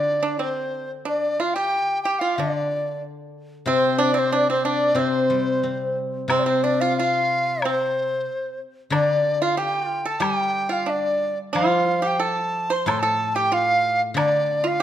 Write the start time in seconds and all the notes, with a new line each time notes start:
Already playing: D3 D4 D5
0.23 D4
0.39 C4 C5
1.05 D4 D5
1.40 F4 F5
1.54 G4 G5
2.03 G4 G5
2.19 F4 F5
2.36 D3 D4 D5
3.66 C3 C4
3.70 C5
3.98 D4 D5
4.14 C4
4.19 C5
4.32 D4 D5
4.50 C4 C5
4.65 D4 D5
4.95 C3 C4
4.99 C5
5.30 G3
5.63 C4
6.28 C3 C4 C5, high woodblock
6.39 D5
6.43 C4 C5
6.64 D4 D5
6.81 F4 F5
6.97 F4 F5
7.62 C4 C5, high woodblock
8.90 D3 D4 D5, high woodblock
9.42 F4 F5
9.57 G4 G5
9.86 F4
10.05 A4 A5
10.20 G3 G4 G5, high woodblock
10.69 F4 F5
10.86 D4 D5, low woodblock
11.53 F3 F4 F5, high woodblock
12.02 G4
12.07 G5
12.20 A4 A5
12.70 C5 C6
12.86 A2 A4 A5, high woodblock
12.90 C6
12.99 A4 A5
13.35 G4 G5
13.52 F4 F5
14.14 D3 D4 D5, high woodblock
14.64 F4 F5